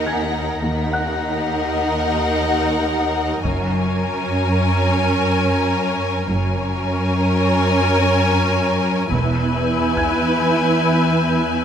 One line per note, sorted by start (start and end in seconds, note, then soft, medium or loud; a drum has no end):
0.00 0.58 D#2 soft
0.00 0.58 D#4 soft
0.00 0.59 A#4 soft
0.00 0.58 F#5 soft
0.00 3.13 A#6 soft
0.00 2.56 B6 soft
0.06 1.72 G#5 soft
0.06 1.72 G#6 soft
0.61 3.40 D#2 soft
0.61 1.15 D#2 soft
0.61 3.41 D#4 soft
0.61 3.41 A#4 soft
0.61 3.41 F#5 soft
0.93 2.57 F#5 soft
0.93 2.58 F#6 soft
3.45 3.97 F#1 soft
3.45 6.25 F#2 soft
3.45 6.25 C#4 soft
3.45 6.26 A#4 soft
3.45 6.25 G#5 soft
3.45 taiko soft
6.28 6.81 F#1 soft
6.28 9.08 F#2 soft
6.28 9.08 C#4 medium
6.28 9.08 A#4 medium
6.28 9.08 G#5 medium
9.09 9.64 E1 soft
9.09 11.65 E2 medium
9.09 11.65 E4 medium
9.09 11.65 B4 medium
9.09 11.65 G#5 medium
9.09 11.65 E6 soft
9.09 11.65 F#6 soft
9.09 11.65 G6 soft
9.09 taiko soft
9.97 11.65 G#5 soft
9.97 11.65 G#6 soft
9.97 taiko soft